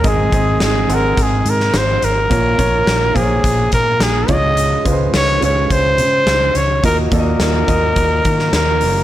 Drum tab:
HH |x-x-x-x-x-x-x-x-|x-x-x-x-x-x-x-x-|x-x-x-x-x-x-x-x-|x-x-x-x-x-x-x-o-|
SD |----o------oo---|----o-------o---|----o-------o---|----o------oo---|
BD |o-o-----o-------|o-o---o-o-o---o-|--o-----o-------|o-o---o-o-o-----|